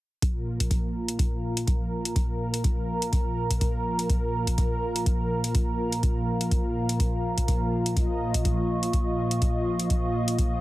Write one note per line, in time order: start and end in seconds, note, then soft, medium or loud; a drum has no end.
0.22 10.61 A#2 medium
0.22 10.61 F3 medium
0.22 10.61 A#3 medium
0.22 10.61 F4 medium
0.22 7.95 A#4 medium
0.22 kick loud
0.22 closed hi-hat soft
0.42 10.61 F4 medium
0.42 8.22 A#5 medium
0.60 kick medium
0.60 closed hi-hat medium
0.71 10.61 F5 medium
0.71 kick loud
0.71 closed hi-hat soft
1.08 closed hi-hat medium
1.19 kick loud
1.19 closed hi-hat medium
1.57 closed hi-hat medium
1.67 kick loud
1.67 closed hi-hat medium
2.05 closed hi-hat medium
2.16 kick loud
2.16 closed hi-hat soft
2.54 closed hi-hat medium
2.64 kick loud
2.64 closed hi-hat soft
3.02 closed hi-hat medium
3.13 kick loud
3.13 closed hi-hat medium
3.50 kick medium
3.50 closed hi-hat medium
3.61 kick loud
3.61 closed hi-hat medium
3.99 closed hi-hat medium
4.10 kick loud
4.10 closed hi-hat soft
4.47 kick medium
4.47 closed hi-hat medium
4.58 kick loud
4.58 closed hi-hat soft
4.96 closed hi-hat medium
5.06 kick loud
5.06 closed hi-hat soft
5.44 closed hi-hat medium
5.55 kick loud
5.55 closed hi-hat soft
5.92 closed hi-hat medium
6.03 kick loud
6.03 closed hi-hat soft
6.41 closed hi-hat medium
6.51 kick loud
6.51 closed hi-hat soft
6.89 closed hi-hat medium
7.00 kick loud
7.00 closed hi-hat soft
7.38 kick medium
7.38 closed hi-hat medium
7.48 kick loud
7.48 closed hi-hat soft
7.86 closed hi-hat medium
7.97 10.61 D#5 medium
7.97 kick loud
7.97 closed hi-hat soft
8.19 10.61 C#6 medium
8.34 kick medium
8.34 closed hi-hat medium
8.45 kick loud
8.45 closed hi-hat soft
8.83 closed hi-hat medium
8.93 kick loud
8.93 closed hi-hat soft
9.31 closed hi-hat medium
9.42 kick loud
9.42 closed hi-hat soft
9.80 closed hi-hat medium
9.90 kick loud
9.90 closed hi-hat soft
10.28 closed hi-hat medium
10.39 kick loud
10.39 closed hi-hat soft